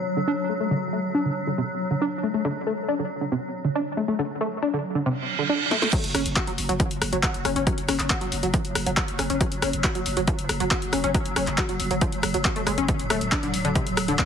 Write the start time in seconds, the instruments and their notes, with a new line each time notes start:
Already playing: synth drone F#3
0.17 synth arpeggio sound D3
0.28 synth arpeggio sound D4
0.49 synth arpeggio sound A3
0.60 synth arpeggio sound A3
0.71 synth arpeggio sound D3
0.93 synth arpeggio sound A3
1.15 synth arpeggio sound D4
1.26 synth arpeggio sound D3
1.47 synth arpeggio sound D3
1.58 synth arpeggio sound C3
1.91 synth arpeggio sound D3
2.02 synth arpeggio sound D4
2.23 synth arpeggio sound A3
2.34 synth arpeggio sound A3
2.45 synth arpeggio sound D3
2.67 synth arpeggio sound A3
2.88 synth arpeggio sound D4
2.99 synth arpeggio sound D3
3.21 synth arpeggio sound D3
3.32 synth arpeggio sound C3
3.65 synth arpeggio sound D3
3.75 synth arpeggio sound D4
3.97 synth arpeggio sound A3
4.08 synth arpeggio sound A3
4.19 synth arpeggio sound D3
4.41 synth arpeggio sound A3
4.62 synth arpeggio sound D4
4.73 synth arpeggio sound D3
4.95 synth arpeggio sound D3
5.06 synth arpeggio sound C3, reverse cymbal
5.39 synth arpeggio sound D3
5.49 synth arpeggio sound D4
5.71 synth arpeggio sound A3, snare
5.82 synth arpeggio sound A3, snare
5.93 synth drone F#3, synth arpeggio sound F#3, kick, closed hi-hat, crash
6.04 808-style bass F#1, closed hi-hat
6.15 808-style bass F#1, synth arpeggio sound C#4, cross-stick, open hi-hat
6.26 808-style bass F#1, closed hi-hat
6.36 synth arpeggio sound F#4, kick, clap, closed hi-hat
6.47 808-style bass F#1, synth arpeggio sound F#3, closed hi-hat
6.58 808-style bass F#1, open hi-hat
6.69 808-style bass F#1, synth arpeggio sound F#3, closed hi-hat
6.80 synth arpeggio sound F3, kick, closed hi-hat
6.91 808-style bass F#1, closed hi-hat
7.02 808-style bass F#1, cross-stick, open hi-hat
7.13 808-style bass F#1, synth arpeggio sound F#3, closed hi-hat
7.23 synth arpeggio sound F#4, kick, clap, closed hi-hat
7.34 808-style bass F#1, closed hi-hat
7.45 808-style bass F#1, synth arpeggio sound C#4, cross-stick, open hi-hat
7.56 808-style bass F#1, synth arpeggio sound C#4, closed hi-hat
7.67 synth arpeggio sound F#3, kick, closed hi-hat
7.78 808-style bass F#1, closed hi-hat
7.88 808-style bass F#1, synth arpeggio sound C#4, cross-stick, open hi-hat
8.00 808-style bass F#1, clap, closed hi-hat
8.10 synth arpeggio sound F#4, kick, clap, closed hi-hat
8.21 808-style bass F#1, synth arpeggio sound F#3, closed hi-hat
8.32 808-style bass F#1, open hi-hat
8.43 808-style bass F#1, synth arpeggio sound F#3, closed hi-hat
8.54 synth arpeggio sound F3, kick, closed hi-hat
8.65 808-style bass F#1, closed hi-hat
8.75 808-style bass F#1, cross-stick, open hi-hat
8.86 808-style bass F#1, synth arpeggio sound F#3, closed hi-hat
8.97 synth arpeggio sound F#4, kick, clap, closed hi-hat
9.08 808-style bass F#1, closed hi-hat
9.19 808-style bass F#1, synth arpeggio sound C#4, cross-stick, open hi-hat
9.30 808-style bass F#1, synth arpeggio sound C#4, closed hi-hat
9.41 synth arpeggio sound F#3, kick, closed hi-hat
9.52 808-style bass F#1, closed hi-hat
9.62 808-style bass F#1, synth arpeggio sound C#4, cross-stick, open hi-hat
9.73 808-style bass F#1, closed hi-hat
9.84 synth arpeggio sound F#4, kick, clap, closed hi-hat
9.95 808-style bass F#1, synth arpeggio sound F#3, closed hi-hat
10.06 808-style bass F#1, open hi-hat
10.17 808-style bass F#1, synth arpeggio sound F#3, closed hi-hat
10.28 synth arpeggio sound F3, kick, closed hi-hat
10.39 808-style bass F#1, closed hi-hat
10.49 808-style bass F#1, cross-stick, open hi-hat
10.60 808-style bass F#1, synth arpeggio sound F#3, closed hi-hat
10.71 synth arpeggio sound F#4, kick, clap, closed hi-hat
10.82 808-style bass F#1, closed hi-hat
10.93 808-style bass F#1, synth arpeggio sound C#4, cross-stick, open hi-hat
11.04 808-style bass F#1, synth arpeggio sound C#4, closed hi-hat
11.14 synth arpeggio sound F#3, kick, closed hi-hat
11.25 808-style bass F#1, closed hi-hat
11.36 808-style bass F#1, synth arpeggio sound C#4, cross-stick, open hi-hat
11.47 808-style bass F#1, clap, closed hi-hat
11.58 synth arpeggio sound F#4, kick, clap, closed hi-hat
11.69 808-style bass F#1, synth arpeggio sound F#3, closed hi-hat
11.80 808-style bass F#1, open hi-hat
11.91 808-style bass F#1, synth arpeggio sound F#3, closed hi-hat
12.01 synth arpeggio sound F3, kick, closed hi-hat
12.12 808-style bass F#1, closed hi-hat
12.23 808-style bass F#1, cross-stick, open hi-hat
12.34 808-style bass F#1, synth arpeggio sound F#3, closed hi-hat
12.45 synth arpeggio sound F#4, kick, clap, closed hi-hat
12.56 808-style bass F#1, synth arpeggio sound A3, closed hi-hat
12.67 808-style bass F#1, synth arpeggio sound G#3, cross-stick, open hi-hat
12.78 808-style bass F#1, synth arpeggio sound C#4, closed hi-hat
12.88 synth arpeggio sound D3, kick, closed hi-hat
12.99 808-style bass D1, closed hi-hat
13.10 808-style bass D1, synth arpeggio sound A3, cross-stick, open hi-hat
13.21 808-style bass D1, closed hi-hat
13.32 synth arpeggio sound D4, kick, clap, closed hi-hat
13.43 808-style bass D1, synth arpeggio sound D3, closed hi-hat
13.54 808-style bass D1, open hi-hat
13.65 808-style bass D1, synth arpeggio sound D3, closed hi-hat
13.75 synth arpeggio sound C3, kick, closed hi-hat
13.86 808-style bass D1, closed hi-hat
13.97 808-style bass D1, cross-stick, open hi-hat
14.08 808-style bass D1, synth arpeggio sound D3, closed hi-hat
14.19 synth arpeggio sound D4, kick, clap, closed hi-hat